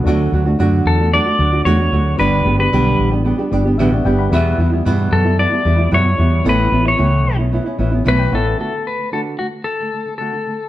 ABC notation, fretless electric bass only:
X:1
M:4/4
L:1/16
Q:1/4=112
K:D
V:1 name="Fretless electric bass" clef=bass
D,,2 D,,2 F,,2 E,,3 z D,,2 E,,2 D,,2 | G,,,2 G,,,2 B,,,2 A,,,3 z G,,,2 A,,,2 G,,,2 | E,,2 E,,2 G,,2 F,,3 z E,,2 F,,2 E,,2 | A,,,2 A,,,2 C,,2 B,,,3 z A,,,2 B,,,2 A,,,2 |
z16 |]